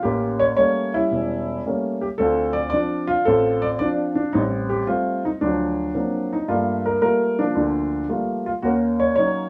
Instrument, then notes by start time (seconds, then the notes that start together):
upright piano
0.03 A1 A#3 C#4 G4
0.40 C#5
0.57 G3 A3 A#3 C#4 C#5
0.94 G3 C#4 E4
1.12 E1
1.66 G3 A3 A#3 C#4
2.01 G4
2.18 D2 C4 F4 A4
2.53 D5
2.70 F3 C4 D4 D5
3.07 F4
3.25 A1 C4 F4 A4
3.62 D5
3.79 F3 C4 D4 D5
4.15 D4
4.33 A1 G3 C4 D#4
4.69 G4
4.87 G3 A3 C4 F4
5.25 D#4
5.41 D2 F3 F#3 D4
5.95 F#3 A#3 C4 D4
6.33 D#4
6.48 G2 A3 A#3 F4
6.86 A#4
7.02 G3 A3 A#3 F4 A#4
7.39 F3 A#3 D4
7.55 D2 D3
8.09 G3 A3 A#3 F4
8.46 F4
8.62 D#2 A#3 C#4 F#4
9.00 C#5
9.16 F#3 C#4 D#4 C#5